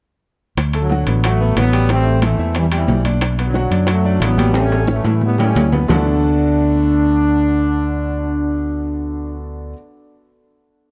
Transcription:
0.57 fingered electric bass D2, high bongo, high conga, high timbale
0.73 grand piano A3 A4, high bongo, high conga, high timbale
0.81 trombone section D3 F#3
0.89 grand piano F#4 F#5, high bongo, high conga, low timbale
1.07 fingered electric bass A1, grand piano B3 B4, high bongo, high conga, high timbale
1.24 grand piano F#3 F#4, trombone section F#3 A3, high bongo, high conga, high timbale
1.40 grand piano B3 B4, high bongo, high conga
1.56 fingered electric bass A1, trombone section F#3 B3, high bongo, low bongo, high conga, high timbale, low timbale
1.73 grand piano G3 G4, high timbale
1.89 grand piano G3 G4, trombone section A3 C4, high bongo, high conga, high timbale
2.06 high bongo, high conga
2.22 trombone section E3 A3, grand piano C4 C5, high bongo, high conga, high timbale, low timbale
2.38 fingered electric bass E2, grand piano E4 E5, high bongo, high conga
2.55 trombone section E3 G3, high bongo, high conga, high timbale
2.71 trombone section C3 E3, grand piano G3 G4, high bongo, high conga, high timbale
2.88 fingered electric bass B1, high bongo, low bongo, high conga, low timbale
3.05 grand piano D4 D5, high conga, high timbale
3.21 high bongo, high timbale
3.38 grand piano B3 B4, high bongo, high conga, high timbale
3.46 trombone section D3 F#3
3.54 grand piano F#4 F#5, high bongo, high conga, low timbale
3.71 fingered electric bass F#2, grand piano D4 D5, high bongo, high conga, high timbale
3.87 grand piano F#3 F#4, trombone section F#3 A3, high bongo, high conga, high timbale
4.04 grand piano D4 D5, high bongo, high conga
4.20 fingered electric bass A1, trombone section F#3 B3, high bongo, low bongo, high conga, high timbale, low timbale
4.38 grand piano G3 G4, high conga, high timbale
4.54 grand piano G3 G4, trombone section A3 C#4, high bongo, high timbale
4.71 high bongo, high conga, high timbale
4.87 trombone section E3 A3, grand piano C#4 C#5, high bongo, high conga
5.04 fingered electric bass A2, grand piano E4 E5, high bongo, high conga, low timbale
5.21 trombone section G3 B3, low bongo, high conga
5.38 grand piano G3 G4, trombone section A3 C#4, low bongo, high conga, low timbale
5.55 fingered electric bass D2, low bongo, high conga, low timbale
5.72 grand piano B3 B4, low bongo, high conga, low timbale
5.88 fingered electric bass D2, grand piano D3 A3 B3 D4 F#4 A4, trombone section D4, low bongo, low conga, low timbale

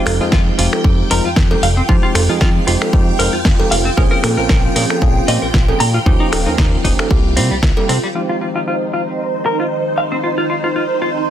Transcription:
Already playing: tine electric piano F3 G#3 C4 D#4 G4, string machine F4 G5
0.06 analog synth bass F1, clean electric guitar F4, finger snap, open hi-hat, cowbell
0.20 analog synth bass F2, tine electric piano F3 G#3 C4 D#4 G#4, clean electric guitar F4
0.32 analog synth bass F2, clean electric guitar F4, kick, snare
0.58 analog synth bass F1, tine electric piano F3 G#3 C4 D#4 G4, clean electric guitar F4, open hi-hat
0.73 finger snap, cowbell
0.84 analog synth bass F2, tine electric piano F3 G#3 C4 D#4 G4, kick
1.10 analog synth bass F1, tine electric piano F3 G#3 C4 D#4 F4, clean electric guitar A#4, open hi-hat
1.25 analog synth bass F2, clean electric guitar F4
1.36 analog synth bass F2, kick, snare
1.51 tine electric piano F3 G#3 C4 D#4 G4, cowbell
1.63 analog synth bass F1, clean electric guitar F5, open hi-hat
1.77 clean electric guitar C4
1.89 analog synth bass F2, tine electric piano F3 G#3 C4 D#4 G4, clean electric guitar F4, kick
2.03 clean electric guitar F4
2.15 analog synth bass F1, clean electric guitar F4, finger snap, open hi-hat, cowbell
2.29 analog synth bass F2, tine electric piano F3 G#3 C4 D#4 G#4, clean electric guitar F4
2.41 analog synth bass F2, clean electric guitar F4, kick, snare
2.67 analog synth bass F1, tine electric piano F3 G#3 C4 D#4 G4, clean electric guitar F4, open hi-hat
2.82 finger snap, cowbell
2.93 analog synth bass F2, tine electric piano F3 G#3 C4 D#4 G4, kick
3.19 analog synth bass F1, tine electric piano F3 G#3 C4 D#4 F4, clean electric guitar A#4, open hi-hat
3.33 analog synth bass F2, clean electric guitar F4
3.45 analog synth bass F2, kick, snare
3.59 tine electric piano F3 G#3 C4 D#4 G4, cowbell
3.71 analog synth bass F1, clean electric guitar F5, open hi-hat
3.85 clean electric guitar C4
3.97 analog synth bass A#1, tine electric piano F3 A#3 C4 C#4 G#4, clean electric guitar A#4, kick
4.11 clean electric guitar A#4
4.23 analog synth bass A#2, clean electric guitar A#4, finger snap, open hi-hat, cowbell
4.37 analog synth bass A#1, tine electric piano F3 A#3 C4 C#4 A#4, clean electric guitar A#4
4.49 analog synth bass A#1, clean electric guitar A#4, kick, snare
4.76 analog synth bass A#2, tine electric piano F3 A#3 C4 C#4 G#4, clean electric guitar A#4, open hi-hat
4.90 finger snap, cowbell
5.02 analog synth bass A#1, tine electric piano F3 A#3 C4 C#4 G#4, kick
5.28 analog synth bass A#2, tine electric piano F3 A#3 C4 C#4 G4, clean electric guitar D#5, open hi-hat
5.42 analog synth bass A#1, clean electric guitar A#4
5.54 analog synth bass A#1, kick, snare
5.68 tine electric piano F3 A#3 C4 C#4 G#4, cowbell
5.80 analog synth bass A#2, clean electric guitar A#5, open hi-hat
5.94 clean electric guitar F4
6.06 analog synth bass D#2, tine electric piano F3 A#3 C#4 D#4 G4, clean electric guitar D#4, kick
6.20 clean electric guitar D#4
6.32 analog synth bass D#1, clean electric guitar D#4, finger snap, open hi-hat, cowbell
6.46 analog synth bass D#2, tine electric piano F3 A#3 C#4 D#4 A#4, clean electric guitar D#4
6.58 analog synth bass D#2, clean electric guitar D#4, kick, snare
6.84 analog synth bass D#1, tine electric piano F3 A#3 C#4 D#4 G4, clean electric guitar D#4, kick, open hi-hat
6.99 finger snap, cowbell
7.10 analog synth bass C2, tine electric piano G3 A#3 C4 E4 G4, kick
7.36 analog synth bass C3, tine electric piano G3 A#3 C4 E4 G4, clean electric guitar C4, open hi-hat
7.51 analog synth bass C2, clean electric guitar G3
7.63 analog synth bass C2, kick, snare
7.77 tine electric piano G3 A#3 C4 E4 G4, cowbell
7.89 analog synth bass C3, clean electric guitar C4, open hi-hat
8.04 clean electric guitar G3
8.14 tine electric piano F3 G#3 C4 D#4 G4, string machine D#4 C5, clean electric guitar F4
8.29 clean electric guitar F4
8.41 clean electric guitar F4
8.56 clean electric guitar F4
8.68 clean electric guitar F4
8.93 clean electric guitar F4
9.46 clean electric guitar A#4
9.60 clean electric guitar F4
9.98 clean electric guitar F5
10.12 clean electric guitar C4
10.24 clean electric guitar F4
10.38 clean electric guitar F4
10.50 clean electric guitar F4
10.64 clean electric guitar F4
10.76 clean electric guitar F4
11.02 clean electric guitar F4

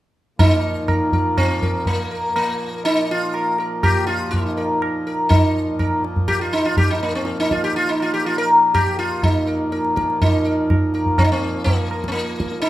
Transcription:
0.39 harmonium A#2 F3, sitar D#4, tabla tin, tabla ge
0.88 sitar A#4, tabla na, tabla ge
1.12 sitar A#4, tabla ge
1.37 sitar C4, tabla na, tabla ge
1.62 sitar A#4, tabla ge
1.86 sitar A#3, tabla tin, tabla ge
2.11 sitar A#4
2.36 sitar A#3, tabla na
2.85 sitar D#4, tabla tin
3.11 sitar F4
3.34 sitar A#4, tabla na
3.58 sitar A#4, tabla na
3.83 sitar G4, tabla na, tabla ge
4.07 sitar F4, tabla te
4.31 sitar D#4, tabla tin, tabla ge
4.57 sitar A#4
4.82 tabla na
5.07 sitar A#4
5.29 sitar D#4, tabla tin, tabla ge
5.79 sitar A#4, tabla na, tabla ge
6.04 tabla te
6.16 tabla ge
6.28 sitar G4, tabla na, tabla ge
6.41 sitar F4
6.53 sitar D#4
6.65 sitar F4
6.77 sitar G4, tabla tin, tabla ge
6.90 sitar D#4
7.03 sitar A#3
7.15 sitar C4
7.25 tabla te
7.37 sitar D#4, tabla te
7.51 sitar F4, tabla ke
7.63 sitar G4, tabla te
7.75 sitar F4, tabla tin
7.89 sitar D#4
8.00 sitar F4, tabla na
8.14 sitar G4
8.25 sitar F4, tabla na
8.38 sitar A#4
8.74 sitar G4, tabla na, tabla ge
8.99 sitar F4
9.23 sitar D#4, tabla tin, tabla ge
9.47 sitar A#4
9.72 sitar A#4, tabla te
9.85 tabla te
9.96 sitar A#4, tabla ke
10.10 tabla te
10.21 harmonium A#2 F3, sitar D#4, tabla tin, tabla ge
10.45 sitar A#4
10.70 tabla na, tabla ge
10.94 sitar A#4, tabla te
11.06 tabla ge
11.18 sitar C4, tabla na, tabla ge
11.24 sitar D#4
11.32 sitar C4
11.64 sitar A#3, tabla tin, tabla ge
11.91 tabla na
12.04 sitar C4, tabla ke
12.12 sitar A#3
12.16 tabla te
12.28 tabla te
12.40 tabla ke
12.52 tabla te
12.62 sitar D#4, tabla tin

